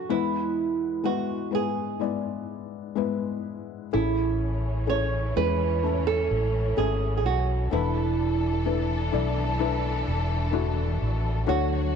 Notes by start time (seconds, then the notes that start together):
Already playing: F#3 B3 D4 F#4 A4 B4
0.09 E2 E3 G#3 B3 E4 B4
1.03 G#3 B3 E4 F#4 B4
1.51 G#3 B3 E4 G#4 B4
2.00 G#3 B3 E4 D5
2.95 G#3 B3 E4 B4
3.93 A1 A2 E3 C#4 E4 G#4 A4
4.87 C#4 E4 G#4 A4 C#5
5.36 E2 G#3 C#4 E4 G#4 B4
5.83 A3 C#4 E4 A4
6.07 A4
6.31 A1
6.77 G#1 A3 C#4 E4 G#4
7.17 G#4
7.25 B1 F#4
7.71 E1 E3 A3 D4 E4 A4 B4
8.65 A3 D4 E4 B4
9.12 B1 A3 D4 E4 D5
9.59 A3 D4 E4 B4
10.07 E1
10.52 A3 D4 E4 F#4
11.01 A1
11.47 D2 D3 F#3 A3 D4 F#4 C#5